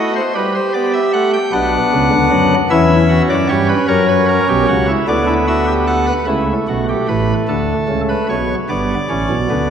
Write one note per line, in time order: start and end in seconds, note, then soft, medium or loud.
0.00 0.21 A3 medium
0.00 0.21 F#4 medium
0.00 0.13 D#5 medium
0.16 0.33 C5 medium
0.35 0.60 G3 medium
0.35 1.36 G4 medium
0.35 0.53 B4 medium
0.55 0.72 C5 medium
0.74 0.99 B3 medium
0.74 0.91 D5 medium
0.93 1.11 E5 medium
1.13 1.38 A3 medium
1.13 1.31 F#5 medium
1.33 1.51 G5 medium
1.52 1.77 B1 medium
1.52 1.77 B2 medium
1.52 2.54 B3 medium
1.52 2.54 D4 medium
1.52 2.54 F#5 medium
1.93 2.10 C#2 medium
1.93 2.10 C#3 medium
2.12 2.29 D2 medium
2.12 2.29 D3 medium
2.31 2.56 F#2 medium
2.31 2.56 F#3 medium
2.70 3.21 E2 loud
2.70 3.22 E3 loud
2.70 4.75 C#4 medium
2.70 2.95 E4 medium
2.70 3.21 E5 medium
3.09 3.34 F#4 medium
3.29 3.47 F#2 medium
3.29 3.47 F#3 medium
3.29 3.47 D5 medium
3.49 3.74 G2 medium
3.49 3.74 G3 loud
3.49 3.74 G4 medium
3.49 3.66 C#5 medium
3.69 3.86 B4 medium
3.88 4.40 F#2 loud
3.88 4.40 F#3 medium
3.88 4.06 A#4 medium
3.88 4.91 C#5 medium
4.08 4.26 B4 medium
4.29 4.46 A#4 medium
4.48 4.66 B1 medium
4.48 4.66 B2 medium
4.48 4.66 G4 medium
4.68 4.93 C#2 medium
4.68 4.93 C#3 medium
4.68 4.86 F#4 medium
4.88 5.05 E4 medium
5.08 6.12 D2 loud
5.08 6.12 D3 loud
5.08 6.12 B3 medium
5.08 5.25 D4 medium
5.08 5.33 D5 medium
5.27 5.45 E4 medium
5.47 5.65 F#4 medium
5.47 5.73 E5 medium
5.67 5.85 G4 medium
5.87 6.05 A4 medium
5.87 6.13 F#5 medium
6.07 6.25 B4 medium
6.27 6.53 C#2 medium
6.27 6.53 C#3 medium
6.27 8.35 A3 medium
6.27 6.52 E4 medium
6.68 6.93 B1 medium
6.68 6.94 B2 medium
6.68 6.86 F#4 medium
6.89 7.06 G4 medium
7.08 7.34 A1 medium
7.08 7.34 A2 soft
7.08 7.33 B4 medium
7.48 7.74 D2 medium
7.48 7.74 D3 medium
7.48 8.01 A4 medium
7.88 8.14 C#2 medium
7.88 8.14 C#3 medium
8.09 8.27 B4 medium
8.29 8.55 B1 medium
8.29 8.54 B2 medium
8.29 8.54 C#5 medium
8.69 8.94 G1 medium
8.69 8.94 G2 medium
8.69 8.94 B3 medium
8.69 9.70 D5 medium
9.09 9.27 A1 medium
9.09 9.27 A2 medium
9.09 9.34 C#4 medium
9.29 9.47 B1 medium
9.29 9.47 B2 medium
9.50 9.70 D2 medium
9.50 9.70 D3 medium
9.50 9.70 B3 medium